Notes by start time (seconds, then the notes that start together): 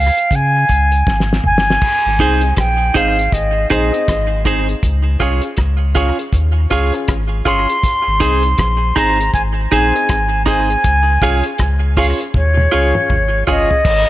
Already playing: C#2
0.00 F5
0.17 closed hi-hat
0.31 C#3, kick, closed hi-hat
0.35 G#5
0.69 C#2, kick, closed hi-hat
0.92 closed hi-hat
1.07 G#1, kick, snare
1.20 snare
1.33 snare
1.44 G1 G#5, mid tom
1.58 snare
1.70 snare
1.82 kick, crash
2.06 G#1
2.19 C2 C4 D#4 G#4 C5, kick, closed hi-hat
2.41 closed hi-hat
2.57 A#1 G5, kick, cross-stick, closed hi-hat
2.94 G#1 C4 D#4 G#4 C5 F5, kick, closed hi-hat
3.19 closed hi-hat
3.32 G#1 D#5, kick, closed hi-hat
3.69 A#1 C4 D#4 G#4 C5 D#5, kick, closed hi-hat
3.92 C4 D#4 G#4, closed hi-hat
4.08 G#1, kick, cross-stick, closed hi-hat
4.44 C4 D#4 G#4 C5, kick, closed hi-hat
4.69 closed hi-hat
4.83 C#2, kick, closed hi-hat
5.19 C2 C#4 F4 G#4 C#5, kick, closed hi-hat
5.41 closed hi-hat
5.57 C#2, kick, cross-stick, closed hi-hat
5.94 C#4 F4 G#4 C#5, kick, closed hi-hat
6.19 closed hi-hat
6.33 D#2, kick, closed hi-hat
6.70 C#2 C#4 F4 G#4 C#5, kick, closed hi-hat
6.93 C#4 F4 G#4, closed hi-hat
7.08 G#1, kick, cross-stick, closed hi-hat
7.45 G1 C#4 F4 G#4 C#5 C6, kick, closed hi-hat
7.69 closed hi-hat
7.83 kick, closed hi-hat
8.07 G#1
8.20 C2 C4 D#4 G#4 C5, kick, closed hi-hat
8.43 closed hi-hat
8.58 A#1, kick, cross-stick, closed hi-hat
8.96 G#1 C4 D#4 G#4 C5 A#5, kick, closed hi-hat
9.20 closed hi-hat
9.34 G#1 G#5, kick, closed hi-hat
9.71 A#1 C4 D#4 G#4 C5 G#5, kick, closed hi-hat
9.94 C4 D#4 G#4, closed hi-hat
10.09 G#1, kick, cross-stick, closed hi-hat
10.46 C4 D#4 G#4 C5 G#5, kick, closed hi-hat
10.70 closed hi-hat
10.84 C#2, kick, closed hi-hat
11.22 C2 C#4 F4 G#4 C#5, kick, closed hi-hat
11.44 closed hi-hat
11.58 C#2, kick, cross-stick, closed hi-hat
11.97 C#4 F4 G#4 C#5 F5, kick, open hi-hat
12.20 closed hi-hat
12.34 D#2 C#5, kick, high tom
12.57 high tom
12.72 C#2 C#4 F4 G#4 C#5
12.94 C#4 F4 G#4, mid tom
13.10 G#1, kick, mid tom
13.47 G1 C#4 F4 G#4 C#5 D#5, floor tom
13.71 floor tom
13.85 G#1, kick, crash